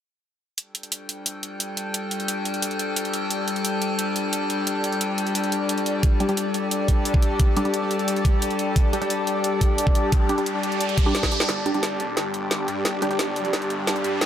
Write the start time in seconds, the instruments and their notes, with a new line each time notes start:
0.58 synth drone G3 D4 A4 G5, ambient pad G4, closed hi-hat
0.75 closed hi-hat
0.83 ambient pad D5, closed hi-hat
0.92 ambient pad A5, closed hi-hat
1.09 closed hi-hat
1.26 closed hi-hat
1.43 closed hi-hat
1.60 closed hi-hat
1.77 closed hi-hat
1.94 closed hi-hat
2.11 closed hi-hat
2.20 closed hi-hat
2.28 closed hi-hat
2.45 closed hi-hat
2.54 closed hi-hat
2.62 closed hi-hat
2.71 closed hi-hat
2.79 closed hi-hat
2.96 closed hi-hat
3.05 closed hi-hat
3.14 closed hi-hat
3.31 closed hi-hat
3.48 closed hi-hat
3.56 closed hi-hat
3.65 closed hi-hat
3.82 closed hi-hat
3.99 closed hi-hat
4.16 closed hi-hat
4.33 closed hi-hat
4.50 closed hi-hat
4.67 closed hi-hat
4.84 closed hi-hat
4.92 closed hi-hat
5.01 closed hi-hat
5.18 closed hi-hat
5.27 closed hi-hat
5.35 closed hi-hat
5.44 closed hi-hat
5.52 closed hi-hat
5.69 closed hi-hat
5.78 closed hi-hat
5.86 closed hi-hat
6.03 synth drone G4 A4, kick, closed hi-hat
6.20 synth stab G3 D4 G4, closed hi-hat
6.29 synth stab G3 D4 G4, closed hi-hat
6.37 closed hi-hat
6.54 closed hi-hat
6.71 closed hi-hat
6.88 kick, closed hi-hat
7.05 closed hi-hat
7.14 kick
7.22 closed hi-hat
7.39 kick, closed hi-hat
7.57 synth stab G3 D4 G4, closed hi-hat
7.65 synth stab G3 D4 G4, closed hi-hat
7.74 closed hi-hat
7.91 closed hi-hat
7.99 closed hi-hat
8.08 closed hi-hat
8.16 closed hi-hat
8.25 kick, closed hi-hat
8.42 closed hi-hat
8.51 closed hi-hat
8.59 closed hi-hat
8.76 kick, closed hi-hat, riser
8.93 synth stab G3 D4 G4, closed hi-hat
9.02 synth stab G3 D4 G4, closed hi-hat
9.10 closed hi-hat
9.27 closed hi-hat
9.44 closed hi-hat
9.61 kick, closed hi-hat
9.78 closed hi-hat
9.87 kick
9.95 closed hi-hat
10.12 kick, closed hi-hat
10.29 synth stab G3 D4 G4, closed hi-hat
10.38 synth stab G3 D4 G4, closed hi-hat
10.46 closed hi-hat
10.63 closed hi-hat
10.72 closed hi-hat
10.81 closed hi-hat
10.89 closed hi-hat
10.98 kick, closed hi-hat
11.06 synth stab G3 D4 G4
11.15 snare, closed hi-hat
11.23 kick, snare, closed hi-hat
11.32 closed hi-hat
11.40 snare
11.49 detuned saw bass G1, synth drone G3 D4 G4, snare, closed hi-hat, riser
11.66 detuned saw bass G1, synth stab G3 D4 G4, closed hi-hat
11.74 synth stab G3 D4 G4, closed hi-hat
11.83 snare, closed hi-hat
12.00 closed hi-hat
12.17 detuned saw bass G1, snare, closed hi-hat
12.34 closed hi-hat
12.51 snare, closed hi-hat
12.68 detuned saw bass G2, closed hi-hat
12.85 detuned saw bass G1, snare, closed hi-hat
13.02 detuned saw bass G1, synth stab G3 D4 G4, closed hi-hat
13.11 synth stab G3 D4 G4, closed hi-hat
13.19 snare, closed hi-hat
13.36 closed hi-hat
13.45 closed hi-hat
13.53 detuned saw bass G1, snare, closed hi-hat
13.62 closed hi-hat
13.70 closed hi-hat
13.87 snare, closed hi-hat
13.96 closed hi-hat
14.04 detuned saw bass G2, closed hi-hat
14.21 detuned saw bass G1, snare, closed hi-hat